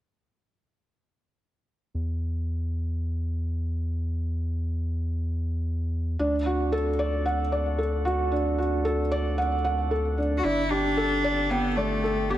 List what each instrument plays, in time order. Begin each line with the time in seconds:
1.94 analog synth bass E2
6.19 analog synth bass D2, felt piano D4
6.46 felt piano F#4
6.72 felt piano A4
6.99 felt piano D5
7.26 felt piano F#5
7.52 felt piano D5
7.78 felt piano A4
8.05 felt piano F#4
8.32 felt piano D4
8.58 felt piano F#4
8.85 felt piano A4
9.12 felt piano D5
9.38 felt piano F#5
9.64 felt piano F#5
9.91 felt piano A4
10.18 felt piano D4
10.38 cello F#4
10.44 analog synth bass G1, felt piano D4, cello E4
10.70 cello D4, felt piano G4
10.97 felt piano A4
11.24 felt piano D5
11.50 cello B3, felt piano G5
11.76 cello A3, felt piano D5
12.04 felt piano A4
12.30 cello B3, felt piano G4